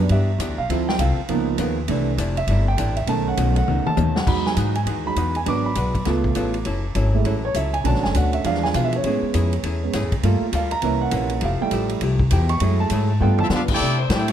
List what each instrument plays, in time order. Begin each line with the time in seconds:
0.00 grand piano G3 B3 D4
0.09 upright bass G2, hollow-body jazz guitar E3 B3 D4 G4, grand piano E5, ride
0.38 upright bass E2, hollow-body jazz guitar E3 B3 D4 G4, hi-hat pedal, ride
0.48 upright bass D2
0.58 upright bass B1, grand piano F5
0.69 upright bass D2, hollow-body jazz guitar D3 C4 F4 A4, grand piano F3 C4 E4, ride
0.89 grand piano G5, snare
0.99 upright bass C2, hollow-body jazz guitar D3 C4 F4 A4, grand piano F5, hi-hat pedal, ride
1.28 upright bass C#2, hollow-body jazz guitar C#3 B3 F4 A#4, grand piano F3 A#3 B3 D#4, ride
1.58 upright bass D#2, hollow-body jazz guitar C#3 B3 F4 A#4, hi-hat pedal, ride
1.88 upright bass C2, hollow-body jazz guitar C3 A3 D4 E4, grand piano E3 A3 D4, ride
2.17 upright bass F1, hollow-body jazz guitar C3 A3 D4 E4, hi-hat pedal, ride
2.37 grand piano E5, ride
2.47 upright bass G1, hollow-body jazz guitar C3 A3 D4 E4, ride
2.68 grand piano G5
2.77 upright bass A1, hollow-body jazz guitar C3 A3 D4 E4, hi-hat pedal, ride
2.97 grand piano E5, ride
3.07 upright bass B1, hollow-body jazz guitar B2 A3 C#4 D#4, grand piano D#3 A3 C#4 A5, ride
3.28 grand piano F#5
3.37 upright bass B1, hollow-body jazz guitar B2 A3 C#4 D#4, hi-hat pedal, ride
3.56 grand piano F#5, ride
3.67 upright bass C#2, hollow-body jazz guitar B2 A3 C#4 D#4, high tom
3.86 grand piano A5, muted upright bass stroke, high tom
3.97 upright bass D#2, hollow-body jazz guitar B2 A3 C#4 D#4, hi-hat pedal, high tom
4.16 grand piano F#5, snare
4.26 upright bass E2, hollow-body jazz guitar E3 G#3 D#4 F#4, grand piano F#3 G#3 D#4 B5, kick, crash
4.46 grand piano G#5, snare
4.56 upright bass G#2, hollow-body jazz guitar E3 G#3 D#4 F#4, hi-hat pedal, ride
4.75 grand piano G#5, ride
4.86 upright bass D#2, hollow-body jazz guitar E3 G#3 D#4 F#4, ride
5.06 grand piano F#3 G#3 D#4 B5
5.16 upright bass E2, hollow-body jazz guitar E3 G#3 D#4 F#4, hi-hat pedal, ride
5.35 grand piano G#5, ride
5.45 upright bass G#1, grand piano F#3 B3 D4 D6, hollow-body jazz guitar G#3 D4 F#4 B4, ride
5.66 grand piano B5
5.75 upright bass B1, hollow-body jazz guitar G#3 D4 F#4 B4, hi-hat pedal, ride
5.95 kick, ride
6.05 upright bass C#2, hollow-body jazz guitar C#3 B3 F4 A4, grand piano A3 B3 F4, snare, ride
6.24 kick
6.35 upright bass A1, hollow-body jazz guitar C#3 B3 F4 A4, hi-hat pedal, ride
6.54 ride
6.65 upright bass F#1, hollow-body jazz guitar F#3 C#4 E4 A4, ride
6.95 upright bass G#1, hollow-body jazz guitar F#3 C#4 E4 A4, hi-hat pedal, ride
7.14 grand piano G#3 A3 E4
7.24 upright bass A1, hollow-body jazz guitar F#3 C#4 E4 A4, ride
7.45 grand piano C#5
7.54 upright bass C#2, hollow-body jazz guitar F#3 C#4 E4 A4, grand piano E5, hi-hat pedal, ride
7.74 grand piano G#5, ride
7.84 upright bass B1, hollow-body jazz guitar B2 A3 D4 F#4, grand piano D3 A3 C#4 A5, ride
7.94 upright bass A1, snare
8.03 upright bass F#1, grand piano G#5, snare
8.14 upright bass D2, hollow-body jazz guitar B2 A3 D4 F#4, grand piano F#5, hi-hat pedal, ride
8.33 grand piano E5, ride
8.44 upright bass E2, hollow-body jazz guitar E3 G#3 D4 F4, grand piano F3 G#3 D4 F5, ride
8.55 snare
8.63 grand piano G#5, snare
8.74 upright bass B2, hollow-body jazz guitar E3 G#3 D4 F4, grand piano F5, hi-hat pedal, ride
8.85 grand piano E5
8.92 grand piano C#5, ride
9.04 upright bass A2, grand piano G#3 B3 C#4, hollow-body jazz guitar A3 C#4 E4 G#4, ride
9.22 muted upright bass stroke
9.34 upright bass F2, hollow-body jazz guitar A3 C#4 E4 G#4, hi-hat pedal, ride
9.53 ride
9.63 upright bass E2, hollow-body jazz guitar A3 C#4 E4 G#4, ride
9.83 grand piano G#3 B3 C#4
9.93 upright bass G#2, hollow-body jazz guitar A3 C#4 E4 G#4, snare, hi-hat pedal, ride
10.03 upright bass E2
10.12 upright bass C#2, kick, ride
10.23 upright bass G2, hollow-body jazz guitar G3 A#3 F4 A4, grand piano A3 A#3 F4, ride
10.41 muted upright bass stroke
10.52 upright bass D2, hollow-body jazz guitar G3 A#3 F4 A4, grand piano F5, hi-hat pedal, ride
10.71 grand piano A#5, ride
10.82 upright bass C2, hollow-body jazz guitar C3 E3 A#3 C#4, grand piano A#3 C#4 E4, ride
11.01 grand piano F#5
11.11 upright bass A#1, hollow-body jazz guitar C3 E3 A#3 C#4, hi-hat pedal, ride
11.30 ride
11.41 upright bass F1, hollow-body jazz guitar F3 A3 E4 G4, grand piano F5, ride
11.61 grand piano G3 A3 E4 G5
11.71 upright bass A1, hollow-body jazz guitar F3 A3 E4 G4, hi-hat pedal, ride
11.89 ride
12.01 upright bass C2, hollow-body jazz guitar F3 A3 E4 G4, ride
12.19 kick
12.31 upright bass E2, hollow-body jazz guitar F3 A3 E4 G4, grand piano G5, hi-hat pedal, ride
12.49 grand piano C#6, ride
12.60 upright bass F#2, hollow-body jazz guitar F#3 A3 E4 G#4, grand piano G#3 A3 E4, ride
12.80 grand piano A5
12.90 upright bass G#2, hollow-body jazz guitar F#3 A3 E4 G#4, hi-hat pedal, ride
13.20 upright bass G2, hollow-body jazz guitar G3 B3 F4 A4, grand piano A3 B3 F4 G5
13.38 trumpet section C4 F4 A4 E5, trombone section E4, grand piano A5, floor tom
13.50 upright bass D3, hollow-body jazz guitar G3 B3 F4 A4, trombone section B3 D4 F4, trumpet section D4, snare, hi-hat pedal
13.54 trumpet section A4 B4 F5
13.68 trombone section A3 E4 G4, trumpet section D5, kick, crash
13.73 trumpet section E4 A4 G5
13.80 hollow-body jazz guitar C3 A3 D4 E4, upright bass C3
13.98 saxophone section A3 D4 E4 C5
14.09 upright bass A2, hollow-body jazz guitar C3 A3 D4 E4, trombone section A3 E4 G4, snare, hi-hat pedal, ride
14.13 trumpet section E4 A4 D5 G5
14.28 ride